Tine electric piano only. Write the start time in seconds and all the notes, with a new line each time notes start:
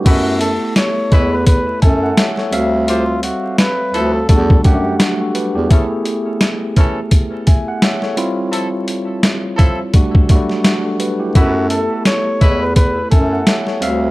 Already playing: G4
0.05 A3 B3 E4 A4
1.82 E5 G#5
2.03 F#5
2.18 C#5 E5
2.38 A4 C#5
2.51 G3 C4 E5 F5
4.29 G3 A3 D4 F#4
4.64 F#3 A3 D4 F#5
4.71 G4
4.99 D4 F#4
5.20 F#4 A4
5.35 G4 B4
5.55 E4 G4
5.70 A3 B3 E4 G#4
7.47 E5 G#5
7.68 F#5
7.83 C#5 E5
8.03 A4 C#5
8.16 G3 C4 E4 F4
9.93 G3 A3 D4 F#4
10.29 F#3 A3 D4 F#4
10.36 G3
10.64 D4 F#4
10.85 F#4 A4
11.00 G4 B4
11.20 E4 G4
11.34 A3 B3 E4 A4
13.11 E5 G#5
13.33 F#5
13.48 C#5 E5
13.68 A4 C#5
13.81 G3 C4 E5 F5